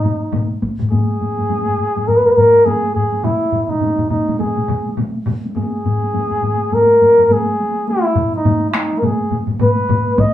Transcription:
0.00 0.58 D#4 medium
0.00 taiko mid medium
0.04 taiko low-mid medium
0.04 taiko high medium
0.22 taiko high soft
0.32 taiko low-mid medium
0.32 taiko mid medium
0.32 taiko high medium
0.51 taiko high soft
0.62 taiko medium
0.62 taiko high medium
0.79 taiko low-mid medium
0.79 taiko mid medium
0.79 taiko high soft
0.91 2.09 G#4 medium
0.91 taiko low-mid loud
0.91 taiko high medium
1.21 taiko low-mid medium
1.21 taiko high medium
1.38 taiko low-mid medium
1.38 taiko high soft
1.49 taiko low-mid medium
1.49 taiko high medium
1.67 taiko low-mid medium
1.78 taiko low-mid medium
1.96 taiko low-mid medium
1.96 taiko high medium
2.07 2.18 A#4 medium
2.07 taiko low-mid medium
2.07 taiko high medium
2.17 2.27 B4 medium
2.26 2.33 A#4 medium
2.26 taiko low-mid medium
2.31 2.38 B4 medium
2.37 2.67 A#4 medium
2.37 taiko low-mid loud
2.37 taiko high medium
2.54 taiko high medium
2.66 2.94 G#4 medium
2.66 taiko low-mid medium
2.66 taiko high medium
2.94 3.25 G#4 medium
2.94 taiko low-mid medium
3.12 taiko high medium
3.24 3.63 E4 medium
3.24 taiko mid medium
3.24 taiko high medium
3.52 taiko mid medium
3.52 taiko high medium
3.63 3.71 E4 medium
3.69 4.09 D#4 medium
3.69 taiko mid medium
3.69 taiko high medium
3.81 taiko mid medium
3.81 taiko high medium
3.99 taiko mid medium
4.10 4.38 D#4 medium
4.10 taiko mid medium
4.10 taiko high medium
4.28 taiko mid medium
4.28 taiko high medium
4.39 4.94 G#4 medium
4.39 taiko mid medium
4.39 taiko high medium
4.57 taiko mid medium
4.68 taiko mid loud
4.68 taiko high soft
4.87 taiko high medium
4.97 taiko mid medium
4.97 taiko high medium
5.26 taiko mid medium
5.26 taiko high medium
5.45 taiko high medium
5.56 6.75 G#4 medium
5.56 taiko low-mid loud
5.56 taiko high medium
5.85 taiko low-mid medium
5.85 taiko high medium
6.02 taiko high soft
6.14 taiko low-mid medium
6.14 taiko high medium
6.31 taiko low-mid medium
6.42 taiko low-mid medium
6.42 taiko high medium
6.72 7.34 A#4 medium
6.72 taiko low-mid medium
6.72 taiko high medium
7.00 taiko low-mid medium
7.00 taiko high medium
7.18 taiko low-mid medium
7.18 taiko high medium
7.29 7.89 G#4 medium
7.29 taiko low-mid medium
7.29 taiko high medium
7.60 taiko high medium
7.88 8.32 E4 medium
7.88 taiko high medium
8.15 taiko low-mid medium
8.15 taiko mid medium
8.15 taiko high medium
8.34 8.68 D#4 medium
8.34 taiko high soft
8.45 taiko low-mid medium
8.45 taiko mid medium
8.45 taiko high medium
8.70 8.78 E4 soft
8.70 taiko rim medium
8.74 9.00 D#4 medium
8.74 taiko rim medium
8.74 taiko high medium
8.92 taiko high medium
8.99 9.06 A#4 medium
8.99 taiko mid medium
9.03 9.38 G#4 medium
9.03 taiko low-mid medium
9.03 taiko high medium
9.31 taiko low-mid medium
9.31 taiko mid medium
9.31 taiko high soft
9.48 taiko low-mid medium
9.48 taiko mid medium
9.48 taiko high medium
9.60 10.21 B4 medium
9.60 taiko low-mid medium
9.60 taiko mid medium
9.60 taiko high medium
9.89 taiko low-mid medium
9.89 taiko mid loud
9.89 taiko high medium
10.07 taiko high medium
10.18 10.34 D#5 medium
10.18 taiko medium
10.18 taiko low-mid loud
10.18 taiko high medium

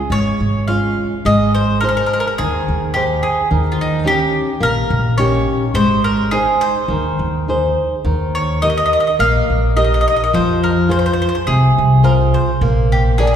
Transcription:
0.00 0.13 G#4 medium
0.10 0.30 G#1 medium
0.10 0.66 G#3 medium
0.10 0.70 C#5 medium
0.40 0.95 G#1 medium
0.68 1.14 G#3 soft
0.68 1.14 C#4 soft
0.68 1.14 F4 soft
0.68 1.21 F5 medium
1.25 1.99 G#1 medium
1.25 1.80 G#3 medium
1.25 1.53 D#5 medium
1.55 1.80 C5 medium
1.81 2.27 D#4 soft
1.81 2.28 G#4 soft
1.81 1.87 A#4 medium
1.81 2.28 C5 soft
1.89 1.96 A#4 medium
1.97 2.04 A#4 medium
2.06 2.12 A#4 medium
2.14 2.19 A#4 medium
2.20 2.26 A#4 medium
2.27 2.33 A#4 medium
2.38 2.58 D#2 medium
2.38 2.93 D#3 medium
2.38 2.90 G#4 medium
2.68 3.21 D#2 medium
2.94 3.39 D#4 soft
2.94 3.22 G4 medium
2.94 3.40 G#4 soft
2.94 3.40 C5 soft
3.23 3.48 G#4 medium
3.51 4.23 D#2 medium
3.51 4.04 D#3 medium
3.72 3.79 F4 medium
3.81 4.05 D#4 medium
4.04 4.50 C#4 medium
4.04 4.50 D#4 soft
4.04 4.51 G4 medium
4.04 4.59 G4 medium
4.61 4.81 A#1 medium
4.61 5.16 A#3 medium
4.61 5.15 A#4 medium
4.90 5.45 A#1 medium
5.18 5.63 C#4 soft
5.18 5.64 D#4 soft
5.18 5.64 G4 soft
5.18 5.70 C#5 medium
5.74 6.49 G#1 medium
5.74 6.30 G#3 medium
5.74 6.04 C5 loud
6.04 6.29 A#4 medium
6.31 6.78 D#4 soft
6.31 6.62 G#4 medium
6.31 6.78 G#4 soft
6.31 6.78 C5 medium
6.61 7.43 C5 medium
6.88 7.08 D#2 medium
6.88 7.46 D#3 medium
7.19 7.75 D#2 medium
7.48 7.94 D#4 soft
7.48 7.94 G#4 soft
7.48 7.95 C5 medium
8.04 8.79 D#2 medium
8.04 8.60 D#3 medium
8.35 8.62 C#5 medium
8.62 9.08 D#4 soft
8.62 9.08 G4 soft
8.62 9.09 A#4 soft
8.62 8.69 D#5 medium
8.70 8.76 D#5 medium
8.77 8.84 D#5 medium
8.86 8.92 D#5 medium
8.93 8.99 D#5 medium
9.00 9.06 D#5 medium
9.07 9.14 D#5 medium
9.19 9.39 A#1 medium
9.19 9.75 A#3 medium
9.19 9.79 F5 loud
9.50 10.04 A#1 medium
9.76 10.22 D#4 soft
9.76 10.22 G4 soft
9.76 10.22 A#4 soft
9.76 9.83 D#5 medium
9.84 9.92 D#5 medium
9.94 10.00 D#5 medium
10.01 10.07 D#5 medium
10.08 10.15 D#5 medium
10.16 10.22 D#5 medium
10.24 10.30 D#5 medium
10.33 11.08 F2 medium
10.33 10.88 F3 medium
10.33 10.62 C5 medium
10.64 10.88 A#4 medium
10.89 11.35 F4 medium
10.89 11.35 G#4 soft
10.89 11.35 C5 soft
10.89 10.98 C5 medium
10.99 11.05 C5 medium
11.06 11.12 C5 medium
11.13 11.21 C5 medium
11.22 11.28 C5 medium
11.29 11.34 C5 medium
11.35 11.42 C5 medium
11.47 11.67 C2 medium
11.47 12.02 C3 medium
11.47 12.00 G#4 medium
11.78 12.33 C2 medium
12.03 12.49 F4 soft
12.03 12.50 G#4 soft
12.03 12.13 A#4 medium
12.03 12.50 C5 soft
12.34 12.60 C5 medium
12.61 13.36 A#1 loud
12.61 13.17 A#3 medium
12.92 13.18 G4 medium
13.18 13.25 G#4 medium
13.18 13.36 G#4 medium
13.18 13.36 A#4 medium
13.18 13.36 D5 medium
13.27 13.33 G#4 medium

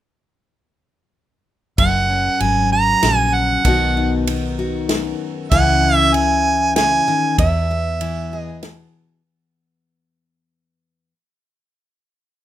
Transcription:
1.78 2.27 F#1 medium
1.78 3.61 F#2 medium
1.78 2.42 F#5 medium
1.78 kick loud
1.78 ride medium
2.10 3.61 C#4 soft
2.40 2.94 G#1 medium
2.40 3.61 F#3 medium
2.40 2.72 G#5 medium
2.40 ride soft
2.72 3.62 F#4 soft
2.72 3.16 A#5 loud
3.03 3.56 A#1 medium
3.03 3.61 C#3 medium
3.03 snare medium
3.03 ride medium
3.16 3.35 G#5 loud
3.34 4.27 F#5 medium
3.65 5.12 B1 medium
3.65 4.27 B2 medium
3.65 4.26 D#3 medium
3.65 5.49 B3 medium
3.65 3.96 D#4 medium
3.65 4.58 F#4 medium
3.65 kick loud
3.65 ride medium
3.97 5.48 D#4 medium
4.27 5.48 D#3 medium
4.27 ride medium
4.59 5.48 F#4 medium
4.89 5.48 F#2 medium
4.89 snare medium
4.89 ride medium
5.51 6.99 C#2 medium
5.51 6.14 C#3 medium
5.51 6.14 E3 medium
5.51 9.03 G#3 medium
5.51 5.82 C#4 medium
5.51 7.11 E4 medium
5.51 5.96 F#5 loud
5.51 kick medium
5.51 ride medium
5.83 7.35 C#4 soft
5.96 6.15 E5 loud
6.14 7.07 E3 medium
6.14 6.75 G#5 loud
6.14 ride soft
6.76 7.07 C#3 medium
6.76 7.34 G#5 medium
6.76 snare medium
6.76 ride soft
7.08 7.39 D#3 medium
7.38 8.86 E2 medium
7.38 11.12 E2 medium
7.38 8.37 E5 medium
7.38 kick loud
7.38 ride medium
7.71 11.12 B3 soft
8.01 9.21 E3 medium
8.01 ride medium
8.33 9.22 G#4 medium
8.37 8.90 D#5 medium
8.63 9.21 B2 medium
8.63 snare medium
8.63 ride medium

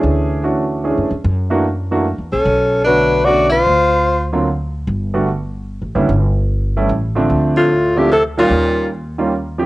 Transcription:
0.00 0.94 D2 medium
0.00 0.41 E3 medium
0.00 0.42 A3 medium
0.00 0.42 C#4 medium
0.00 0.42 D4 medium
0.00 0.42 G#4 medium
0.43 0.82 E3 medium
0.43 0.82 A3 medium
0.43 0.83 C#4 medium
0.43 0.83 D4 medium
0.43 0.83 F#4 medium
0.84 1.08 E3 medium
0.84 1.08 A3 medium
0.84 1.08 C#4 medium
0.84 1.08 D4 medium
0.84 1.08 G#4 medium
0.97 1.10 F#2 medium
1.11 1.23 F2 medium
1.24 2.15 F#2 medium
1.50 1.63 E3 medium
1.50 1.63 A3 medium
1.50 1.63 A#3 medium
1.50 1.64 D4 medium
1.50 1.64 F#4 medium
1.91 2.04 E3 medium
1.91 2.04 A3 medium
1.91 2.04 A#3 medium
1.91 2.04 D4 medium
1.91 2.04 F#4 medium
2.18 2.31 E2 medium
2.32 2.45 A#1 medium
2.32 2.83 C#4 medium
2.32 2.83 A4 medium
2.45 3.63 B1 medium
2.84 3.25 D3 medium
2.84 3.25 A3 medium
2.84 3.25 B3 medium
2.84 3.26 D4 medium
2.84 3.26 F#4 medium
2.84 3.26 B4 loud
2.84 3.26 C#5 medium
3.25 3.50 D3 medium
3.25 3.50 A3 medium
3.25 3.50 B3 medium
3.25 3.50 C#4 medium
3.25 3.49 F#4 medium
3.25 3.50 F#4 medium
3.25 3.51 D5 loud
3.50 4.28 F4 medium
3.50 4.29 C5 loud
3.67 4.84 D2 medium
4.33 4.46 D3 medium
4.33 4.46 F#3 medium
4.33 4.46 A#3 medium
4.33 4.46 C4 medium
4.33 4.46 F4 medium
4.87 5.78 G1 medium
5.14 5.27 D3 medium
5.14 5.27 G3 medium
5.14 5.27 A3 medium
5.14 5.27 B3 medium
5.14 5.27 F#4 medium
5.82 5.94 A1 medium
5.95 6.08 F#1 medium
5.95 6.08 D3 medium
5.95 6.08 G3 medium
5.95 6.08 B3 medium
5.95 6.08 C#4 medium
5.95 6.08 E4 medium
6.09 6.86 G1 medium
6.77 6.89 E3 medium
6.77 6.89 G3 medium
6.77 6.89 A3 medium
6.77 6.89 C#4 medium
6.77 6.89 E4 medium
6.89 7.27 A1 medium
7.15 7.67 D3 medium
7.15 7.68 F3 medium
7.15 7.67 A3 medium
7.15 7.68 C4 medium
7.15 7.68 D4 medium
7.29 8.47 D2 medium
7.56 7.98 A2 medium
7.56 7.99 F4 medium
7.96 8.11 A#2 medium
7.96 8.09 D3 medium
7.96 8.09 F3 medium
7.96 8.10 A3 medium
7.96 8.10 C4 medium
7.96 8.10 E4 medium
7.96 8.11 G4 medium
8.11 8.23 C3 medium
8.11 8.24 A4 loud
8.38 8.88 A#2 medium
8.38 8.89 D#3 medium
8.38 8.89 G3 medium
8.38 8.89 A#3 medium
8.38 8.89 C#4 medium
8.38 8.89 F4 medium
8.50 9.66 D#2 medium
9.18 9.31 D#3 medium
9.18 9.31 G3 medium
9.18 9.31 A#3 medium
9.18 9.31 C#4 medium
9.18 9.31 F4 medium
9.58 9.66 F3 medium
9.58 9.66 A3 medium
9.58 9.66 C4 medium
9.58 9.66 E4 medium
9.58 9.66 G4 medium

